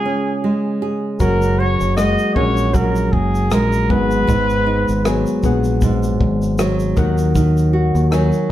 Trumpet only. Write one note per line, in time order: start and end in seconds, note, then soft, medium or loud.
0.00 0.78 G#4 medium
1.20 1.61 A#4 medium
1.59 1.96 C#5 loud
1.97 2.33 D#5 medium
2.35 2.76 C#5 medium
2.74 3.14 A#4 medium
3.13 3.53 G#4 medium
3.52 3.92 A#4 medium
3.91 5.44 B4 loud